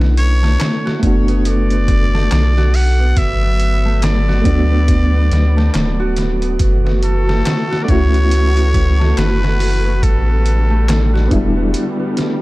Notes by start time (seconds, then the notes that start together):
Already playing: B1 A3 C#4 D4 E4
0.00 B3, snare
0.17 C#5, closed hi-hat
0.42 A3, snare
0.60 snare, closed hi-hat, darbuka tek
0.85 F#4, snare
0.99 F#1 A3 B3, kick, closed hi-hat
1.04 D4 F#4
1.28 B3, closed hi-hat
1.45 D5, closed hi-hat
1.70 B3, closed hi-hat
1.88 kick, closed hi-hat
2.14 A3, snare
2.31 B1, snare, closed hi-hat, darbuka tek
2.57 F#4, snare
2.74 F#5, open hi-hat
3.00 B3
3.16 G1 F#3 B3 E5, kick, closed hi-hat
3.43 B3
3.60 closed hi-hat
3.85 A3
4.02 D5, snare, closed hi-hat, darbuka tek
4.28 F#4, snare
4.42 A3 B3, kick, closed hi-hat
4.46 D2 D4 F#4
4.71 B3
4.88 kick, closed hi-hat
5.14 B3
5.31 D2, snare, closed hi-hat
5.57 A3, snare
5.74 D1, snare, closed hi-hat, darbuka tek
6.00 F#4
6.17 snare, closed hi-hat
6.42 B3, closed hi-hat
6.59 F#1 E3 A3 F#4, kick, closed hi-hat
6.85 B3, snare
7.03 A4, closed hi-hat
7.28 A3, snare
7.45 snare, closed hi-hat, darbuka tek
7.70 F#4, snare
7.83 A3 C#4 D5
7.88 C#2 E4 F#4 C#5, kick, closed hi-hat
8.14 B3, closed hi-hat
8.31 closed hi-hat
8.57 B3, closed hi-hat
8.74 kick, closed hi-hat
9.00 A3, snare
9.17 F#1 B4, snare, closed hi-hat, darbuka tek
9.42 F#4, snare
9.60 open hi-hat
9.85 B3
10.03 A1 D3 G3 A4, kick, closed hi-hat
10.28 B3
10.46 closed hi-hat
10.70 A3
10.88 snare, closed hi-hat, darbuka tek
11.13 F#4, snare
11.28 E1 B3 D4, kick, closed hi-hat
11.33 G3 E4
11.56 B3
11.74 closed hi-hat
11.99 B3
12.17 snare, closed hi-hat